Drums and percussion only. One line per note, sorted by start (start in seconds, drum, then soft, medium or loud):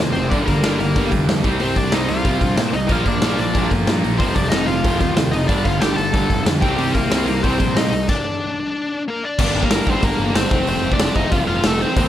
0.15 open hi-hat medium
0.32 kick loud
0.32 open hi-hat medium
0.48 kick medium
0.48 open hi-hat medium
0.64 snare loud
0.64 open hi-hat medium
0.80 open hi-hat medium
0.96 kick loud
0.96 open hi-hat medium
1.12 kick medium
1.12 open hi-hat medium
1.29 snare loud
1.29 open hi-hat medium
1.44 kick loud
1.44 open hi-hat medium
1.60 open hi-hat medium
1.76 kick medium
1.76 open hi-hat medium
1.92 snare loud
1.92 open hi-hat medium
2.09 open hi-hat medium
2.25 kick loud
2.25 open hi-hat medium
2.41 kick medium
2.41 open hi-hat medium
2.57 snare loud
2.57 open hi-hat medium
2.74 open hi-hat medium
2.89 kick loud
2.89 open hi-hat medium
3.06 kick medium
3.06 open hi-hat soft
3.22 snare loud
3.22 open hi-hat medium
3.38 open hi-hat medium
3.55 kick loud
3.55 open hi-hat medium
3.71 kick medium
3.71 open hi-hat medium
3.87 snare loud
3.87 open hi-hat medium
4.04 open hi-hat medium
4.20 kick loud
4.20 open hi-hat medium
4.35 kick medium
4.35 open hi-hat medium
4.51 snare loud
4.51 open hi-hat medium
4.68 open hi-hat medium
4.85 kick loud
4.85 open hi-hat medium
5.00 kick medium
5.00 open hi-hat medium
5.17 snare loud
5.17 open hi-hat medium
5.33 open hi-hat medium
5.49 kick loud
5.49 open hi-hat medium
5.65 kick medium
5.65 open hi-hat medium
5.81 snare loud
5.81 open hi-hat medium
5.98 open hi-hat medium
6.14 kick loud
6.14 open hi-hat medium
6.30 kick medium
6.30 open hi-hat medium
6.46 snare loud
6.46 open hi-hat medium
6.62 kick loud
6.62 open hi-hat medium
6.78 open hi-hat medium
6.95 kick medium
6.95 open hi-hat medium
7.11 snare loud
7.11 open hi-hat medium
7.28 open hi-hat medium
7.44 kick loud
7.44 open hi-hat medium
7.60 kick medium
7.60 open hi-hat medium
7.77 snare loud
7.77 open hi-hat medium
7.93 open hi-hat medium
8.09 kick loud
8.09 crash medium
9.39 kick loud
9.39 crash loud
9.63 kick medium
9.71 snare loud
9.71 open hi-hat medium
9.87 kick loud
10.02 kick loud
10.02 open hi-hat medium
10.35 snare loud
10.35 open hi-hat medium
10.51 kick loud
10.67 open hi-hat medium
10.92 kick medium
10.99 snare loud
10.99 open hi-hat medium
11.16 kick medium
11.32 kick loud
11.32 open hi-hat medium
11.63 snare loud
11.63 open hi-hat medium
11.96 kick loud
11.96 open hi-hat medium